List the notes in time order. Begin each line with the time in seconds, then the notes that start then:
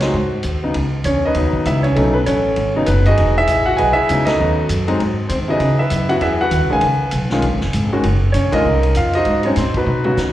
Already playing: C#2
0.00 F#3 G#3 C4 D#4 C5, snare, ride
0.07 F#4
0.14 G#2
0.43 D#2, hi-hat pedal, ride
0.63 C#3 F#3 B3 D#4
0.74 C#2, ride
1.04 E2 C#4 C#5, hi-hat pedal, ride
1.25 D#4 B4 D#5
1.35 D#2 C#3 F#3 B3 D#4, ride
1.53 kick
1.65 C#2 E4 E5, hi-hat pedal, ride
1.83 C#4 C#5, ride
1.96 B1 C#3 F#3 A3 B3 C#4 D#4 A4, ride
2.14 B3 B4
2.26 A1 C#4 A4 C#5, hi-hat pedal, ride
2.56 G#1, ride
2.76 C#3 F#3 B3 D#4
2.86 F#1 B3 B4, hi-hat pedal, ride
3.05 D#4 F#4 G#4 D#5, ride
3.17 E1, ride
3.38 E4 G#4 E5
3.47 A1, hi-hat pedal, ride
3.66 F#4 F#5
3.77 B1 G#4 B4 D#5 G#5, ride
3.93 E4 G#4 E5
3.98 muted upright bass stroke
4.09 C#2 C#3 F#3 B3 D#4, hi-hat pedal, ride
4.25 D#4 F#4 A4 D#5, snare, ride
4.40 D#2 C#3 F#3 B3 D#4
4.69 F#2, hi-hat pedal, ride
4.88 F#3 G#3 C4 D#4, ride
4.99 G#2, ride
5.29 D#3 C4 C5, hi-hat pedal, ride
5.48 C#3 F#3 B3 D#4 E4 G#4 B4 D#5
5.59 C#3, ride
5.79 E4 B4 E5
5.90 F#2, hi-hat pedal, ride
6.09 C#3 F#3 B3 E4 F#4 F#5, ride
6.21 E2 E4 G#4 B4 E5, ride
6.41 F#4 B4 F#5
6.51 D#2, hi-hat pedal, ride
6.61 C#2
6.70 B1 D#3 G#3 C#4 G#4 B4 F5 G#5
6.81 C#2, ride
7.11 B1, hi-hat pedal, ride
7.30 D#3 G#3 C#4 F4, snare
7.42 A#1, ride
7.53 G#1
7.61 F1, snare
7.73 G#1, hi-hat pedal, ride
7.93 D#3 G#3 C#4 F#4
8.03 F#1, ride
8.32 A#1 C#4 C#5, hi-hat pedal, ride
8.52 D#3 G#3 C#4 D#4 F4 A#4 D#5, kick, ride
8.65 C2
8.83 ride
8.95 F2 F4 F5, hi-hat pedal, ride
9.13 D#4 F#4 C5 D#5, ride
9.25 G#2, ride
9.43 F#3 G#3 C4 C#4 D#4 C#5, ride
9.56 A2 C4 C5, snare, hi-hat pedal, ride
9.74 B3 D#4 F#4 B4, kick, ride
9.86 B2, mid tom
10.04 C#3 F#3 B3 F#4, mid tom
10.17 D#3, snare, hi-hat pedal